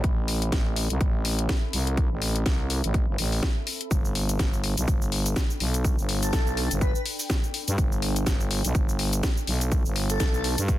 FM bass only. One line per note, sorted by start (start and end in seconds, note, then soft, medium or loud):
0.04 0.51 A1 medium
0.52 0.88 A1 medium
0.90 0.99 C2 loud
1.01 1.47 A1 medium
1.73 2.09 C2 loud
2.11 2.44 A1 medium
2.46 2.82 C2 loud
2.84 3.06 A1 loud
3.08 3.17 G1 medium
3.18 3.41 A1 medium
3.91 4.38 G1 medium
4.39 4.75 G1 loud
4.78 4.86 B1 medium
4.88 5.35 G1 medium
5.60 5.96 B1 loud
5.98 6.31 G1 medium
6.33 6.69 B1 medium
6.71 6.93 G1 loud
7.68 7.76 G2 medium
7.78 8.25 G1 medium
8.26 8.62 G1 medium
8.65 8.73 B1 loud
8.75 9.22 G1 medium
9.47 9.83 B1 loud
9.85 10.18 G1 loud
10.20 10.56 B1 loud
10.58 10.79 G2 loud